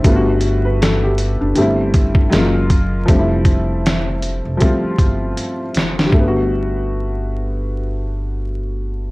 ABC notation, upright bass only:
X:1
M:4/4
L:1/16
Q:"Swing 16ths" 1/4=79
K:Gmix
V:1 name="Upright bass" clef=bass
G,,,6- G,,, ^F,,, G,,,4 F,,,4 | F,,,6- F,,, F,,, z2 G,,,2 z2 ^F,,,2 | G,,,16 |]